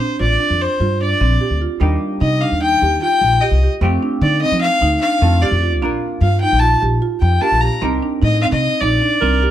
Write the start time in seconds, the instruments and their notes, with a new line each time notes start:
Already playing: fiddle C5
0.00 marimba D4
0.19 upright bass A1, marimba F4, fiddle D5
0.40 marimba D4
0.50 upright bass F2
0.62 fiddle C5
0.80 upright bass G2, marimba F4
1.01 marimba D4, fiddle D5
1.21 upright bass A#1, marimba C4
1.41 marimba G4
1.50 upright bass D2
1.61 marimba F4
1.80 upright bass D#2, hollow-body jazz guitar G3 A#3 D#4 G4, marimba D4
2.21 upright bass C3, marimba D#4, fiddle D#5
2.42 marimba D4, fiddle F5
2.52 upright bass D#2
2.62 marimba D#4, fiddle G5
2.82 upright bass D#2, marimba G4
3.02 marimba F4, fiddle G5
3.21 upright bass A#1
3.41 marimba G4, fiddle D#5
3.51 upright bass C2
3.63 marimba G4
3.81 upright bass F2, hollow-body jazz guitar A3 C4 F4 G4, marimba C4
4.03 marimba D4
4.21 upright bass D3, marimba D#4, fiddle D5
4.41 marimba C4, fiddle D#5
4.52 upright bass F3
4.61 fiddle F5
4.81 upright bass D2, marimba D#4
5.01 marimba D4, fiddle F5
5.22 upright bass F2, hollow-body jazz guitar A3 C4 F4 A4, marimba C4
5.42 marimba G4, fiddle D5
5.52 upright bass F2
5.62 marimba F4
5.82 upright bass A#1, hollow-body jazz guitar A#3 D4 F4 A#4, marimba D4
6.21 upright bass G2, marimba F4, fiddle F5
6.40 marimba D#4, fiddle G5
6.52 upright bass A#1
6.59 marimba F4, fiddle A5
6.82 upright bass A#1, marimba G4
7.02 marimba F4
7.20 upright bass F2, fiddle G5
7.41 hollow-body jazz guitar A#3 D4 F4 A#4, marimba G4, fiddle A5
7.52 upright bass A#1
7.61 marimba G4, fiddle A#5
7.81 upright bass C2, hollow-body jazz guitar C4 D#4 G4 A#4, marimba C4
8.03 marimba D4
8.22 upright bass A2, marimba D#4, fiddle D#5
8.42 marimba C4, fiddle F5
8.52 upright bass C3, fiddle D#5
8.81 upright bass A#1, marimba D#4, fiddle D5
9.02 marimba D4
9.21 upright bass C2, marimba C4, alto saxophone A#4
9.42 marimba G4